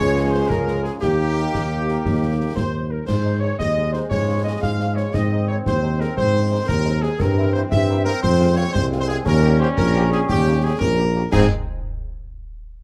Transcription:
Already playing: G#3 C#5
0.00 C#2 F3 C#4 F4 G#4
0.31 C5
0.49 C#2 A#4, concert bass drum, snare
0.68 snare
0.84 G#4, snare
1.00 D#2 D#3 A#3 D#4 G4, concert bass drum, snare, crash
1.53 D#2, concert bass drum, snare
1.88 snare
2.04 D#2, concert bass drum, snare
2.56 D#2 C5, concert bass drum, snare
2.90 A#4
3.06 G#2 D#3 G#3 C5, concert bass drum, snare, crash
3.25 G#3 D#4
3.40 G#3 D#4 C#5
3.58 D#2 D#5, concert bass drum, snare
3.76 G#3 D#4
3.92 G#3 D#4 C5, snare
4.09 G#2 F3 C#5, concert bass drum, snare
4.28 G#3 C#4 F4
4.44 G#3 C#4 F4 D#5
4.61 G#2 F5, concert bass drum, snare
4.79 G#3 C#4 F4, snare
4.95 G#3 C#4 F4 C#5, snare
5.13 G#2 D#3 C4 D#5, concert bass drum, snare, crash
5.30 G#3 C4 D#4
5.48 G#3 C4 D#4 C#5
5.65 D#2 C5, concert bass drum, snare
5.83 G#3 C4 D#4
5.98 G#3 C4 D#4 A#4, snare
6.15 G#2 C5, concert bass drum, snare
6.34 G#3 C4 D#4
6.52 G#3 C4 D#4
6.66 D#2 A#4, concert bass drum, snare
6.85 G#3 C4 D#4, snare
7.01 G#3 C4 D#4 G#4, snare
7.19 G2 E3 C4 A#4, concert bass drum, snare, crash
7.38 A#3 C4 E4
7.53 A#3 C4 E4 C5
7.70 G2 E5, concert bass drum, snare
7.90 A#3 C4 E4
8.05 A#3 C4 E4 A#4, snare
8.22 F2 G#3 C5, concert bass drum, snare
8.40 G#3 C4 F4
8.56 G#3 C4 F4 C#5
8.73 C2 C5, concert bass drum, snare
8.92 G#3 C4 F4, snare
8.99 C5
9.09 G#3 C4 F4 G#4, snare
9.26 D#2 G3 C#4 A#4, concert bass drum, snare, crash
9.42 A#3 C#4 G4
9.60 A#3 C#4 G4 C5
9.77 A#1 A#4, concert bass drum, snare
9.96 A#3 C#4 G4
10.11 A#3 C#4 G4 G#4, snare
10.28 D#2 G4, concert bass drum, snare
10.47 A#3 C#4 G4
10.63 A#3 C#4 G4 G#4
10.79 A#1 A#4, concert bass drum, snare
10.98 A#3 C#4 G4
11.15 A#3 C#4 G4
11.32 G#2 G#3 C4 D#4 G#4 G#5, concert bass drum, snare, crash

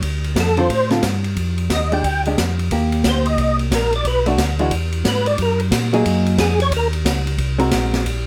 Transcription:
0.02 D2, kick, ride
0.24 ride
0.35 F2, kick, snare, hi-hat pedal, ride
0.40 A4
0.57 D3 C4 F4 A4 C5, ride
0.69 A2, kick, ride
0.90 D3 C4 F4 A4, snare, ride
1.02 G2, kick, snare, hi-hat pedal, ride
1.24 ride
1.36 F2, kick, ride
1.58 ride
1.70 D#2 D#5, kick, snare, hi-hat pedal, ride
1.92 G#3 D4 G4 G5, ride
2.04 D2, kick, ride
2.25 G#3 D4 G4, ride
2.38 F2, kick, snare, hi-hat pedal, ride
2.59 ride
2.71 D#2 A#3 G4, kick, ride
2.92 ride
3.04 D2, kick, snare, hi-hat pedal, ride
3.09 C5
3.25 D#5, ride
3.38 C2, kick, ride
3.59 ride
3.71 A#1, kick, snare, hi-hat pedal, ride
3.75 A#4
3.92 D5, ride
4.05 B1 B4, kick, ride
4.26 A3 D4 F#4, ride
4.38 D2, kick, snare, hi-hat pedal, ride
4.59 E3 G#3 D4 F#4, ride
4.71 E2, kick, ride
4.92 ride
5.04 G#2 B4, kick, snare, hi-hat pedal, ride
5.26 D5, ride
5.38 F#2, kick, ride
5.42 A#4
5.60 ride
5.71 A#2, kick, snare, hi-hat pedal, ride
5.93 F#3 A#3 D#4 G#4, ride
6.05 F#2, kick, ride
6.26 ride
6.38 F2 G#4, kick, snare, hi-hat pedal, ride
6.60 C#5, ride
6.71 D#2, kick, ride
6.76 A#4
6.93 ride
7.05 C#2, kick, snare, hi-hat pedal, ride
7.27 ride
7.38 C2, kick, ride
7.59 G#3 C4 F#4 A#4, ride
7.71 A#1, kick, snare, hi-hat pedal, ride
7.93 snare, ride
8.05 A#1, kick, ride

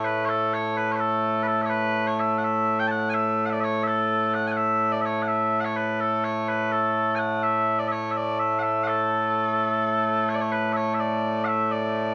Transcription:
Already playing: A2 A3
0.04 B4
0.25 C#5
0.29 A4
0.53 C#5
0.77 B4
0.92 B4 C#5
1.00 A4
1.43 B4
1.47 A4
1.62 C#5 E5
1.69 B4
2.07 C#5
2.19 E5
2.38 F#5
2.44 E5
2.80 G5
2.87 F#5 A5
3.10 G#5
3.14 E5
3.46 F#5
3.50 D5 E5
3.60 C#5 E5
3.83 E5
3.87 A4
4.34 F#5
4.47 G#5
4.52 F#5
4.57 E5
4.92 D5
5.01 E5
5.05 C#5
5.22 F#5
5.28 E5
5.60 F#5
5.65 C#5
5.76 B4
6.00 A4
6.24 C#5
6.48 B4
6.72 A4
7.15 F#5 G#5
7.43 E5
7.79 D5
7.87 E5
7.92 C#5
8.11 E5
8.16 D5
8.39 E5
8.59 E5 F#5
8.83 F#5
8.88 A4
10.29 C#5
10.34 D5
10.41 C#5
10.52 B4
10.73 C#5 E5
10.94 E5
11.00 D5
11.44 E5 F#5
11.71 D5

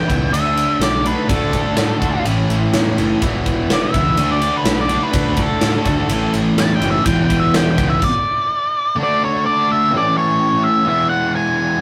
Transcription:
Already playing: E2 E3 B3 G5
0.06 C#2 G#3 B3 E4, kick, ride
0.10 E3
0.31 D2 D3 A3 D4 F#4 E5, ride
0.56 D3, ride
0.79 B1 A3 D5, snare, ride
1.02 D3 A3 D4 F#4, ride
1.06 D3 B4
1.27 D2 D3 A3 D4 F#4 A4, kick, ride
1.52 D3, kick, ride
1.77 A2 D4, snare, ride
1.99 D2 D3 A3 D4 F#4, kick, ride
2.24 A1 A2 E3 A3 C#4 E4, ride
2.49 A1 E3, ride
2.73 E2 A3, snare, ride
2.94 F#1 E3 A3 C#4 E4, ride
2.99 A2 E3
3.19 E1 E2 B2 E3 G#3 B3 E4, kick, ride
3.23 E3
3.46 E1 E3, kick, ride
3.68 E1 B3, snare, ride
3.73 D5
3.83 E5
3.93 C#2 G#3 B3 E4, kick, ride
3.97 E3
4.15 D2 D3 A3 D4, ride
4.20 F#4
4.31 D5
4.41 D3, ride
4.57 B4
4.64 B1 A3, snare, ride
4.81 D5
4.88 D3 A3 D4 F#4, ride
4.93 D3
5.03 B4
5.11 D2 D3 A3 D4 F#4, kick, ride
5.37 D3, kick, ride
5.42 A4
5.60 A2 D4, snare, ride
5.85 D2 D3 A3 D4 F#4, kick, ride
6.07 A1 A2 E3 A3 C#4, ride
6.12 E4
6.33 A1 E3, ride
6.56 E2 A3 A5, snare, ride
6.74 G5
6.79 F#1 A2 E3 A3 C#4 E4, ride
6.91 E5
7.04 E1 E2 B2 E3 G#3 B3 E4 G5, kick, ride
7.24 G5
7.28 E1 E3, kick, ride
7.40 E5
7.52 E1 B3, snare, ride
7.56 G5
7.71 G5
7.75 C#2 G#3 B3 E4, kick, ride
7.79 E3
7.90 E5
8.02 D5, kick, crash
8.96 D3 A3 D4
9.00 F#4 D5
9.24 C#5
9.46 D5
9.71 E5
9.91 A2 E3 A3 C#4 E4
9.97 D5
10.18 C#5
10.63 E5
10.86 E3 G#3 B3 E5
10.90 E4
11.09 F#5
11.36 G#5

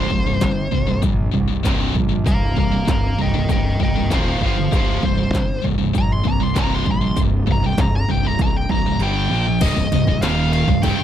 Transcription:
Already playing: C5
0.10 C1 C2 G2, kick
0.27 C2 G2
0.41 G1 C2 G2, kick, snare, open hi-hat
0.71 C1 C2 G2, kick
0.87 C2 G2
1.02 A#1 C2 G2, kick, open hi-hat
1.32 C2 G2, kick
1.48 C2 G2
1.63 C1 C2 G2 C3, kick, snare, open hi-hat
1.95 A#1 C2 G2, kick
2.09 C2 G2
2.26 C1 C2 G2 F5 A#5, kick, open hi-hat
2.56 C1 C2 G2 F5 A#5, kick
2.72 C2 G2
2.85 C1 C2 G2, kick, snare, open hi-hat
2.90 F5 A#5
3.18 C1 C2 G2 D#5, kick
3.23 G5
3.34 C2 G2
3.49 C1 C2 G2 D#5 G5, kick, open hi-hat
3.79 C1 C2 G2 D#5, kick
3.84 G5
3.95 C2 G2
4.10 D#1 D#2 A#2 D#3 C5, kick, snare, open hi-hat
4.15 F5
4.41 G1 G2 D3 G3, kick
4.46 C5 F5
4.56 G2 D3
4.71 C1 C2 G2 C3, kick, open hi-hat
4.76 C5 F5
5.03 C1 C2 G2 C5, kick
5.18 C2 G2
5.33 G1 C2 G2, kick, snare, open hi-hat
5.62 C1 C2 G2, kick
5.78 C2 G2
5.93 A#1 C2 G2, kick, open hi-hat
5.98 A#5
6.13 C6
6.24 C2 G2, kick
6.28 A#5
6.40 C2 G2 C6
6.56 C1 C2 G2 C3 A#5, kick, snare, open hi-hat
6.75 C6
6.86 A#1 C2 G2, kick
6.91 C6
7.01 C2 G2
7.16 C1 C2 G2, kick, open hi-hat
7.47 C1 C2 G2, kick
7.52 A#5
7.64 C2 G2 G5
7.77 C1 C2 G2 A#5, kick, snare, open hi-hat
7.96 A#5
8.09 C1 C2 G2 G5, kick
8.25 C2 G2 A#5
8.39 C1 C2 G2 A#5, kick, open hi-hat
8.57 G5
8.69 C1 C2 G2 A#5, kick
8.86 C2 G2
9.00 G1 G2 D3 G3 G5, open hi-hat
9.29 A#1 A#2
9.34 F3 A#3
9.48 A#2 F3
9.61 C1 C2 G2 D#5, kick, crash, ride
9.76 C1 C2 G2, kick
9.92 C1 C2 G2, kick, ride
10.07 C1 C2 G2, kick
10.20 D#1 D#2 A#2 D#3 F5, snare, ride
10.53 F5, ride
10.67 C1 C2 G2, kick
10.82 C1 C2 G2 G5, kick, ride
10.98 muted fingered electric bass stroke, muted distorted electric guitar stroke

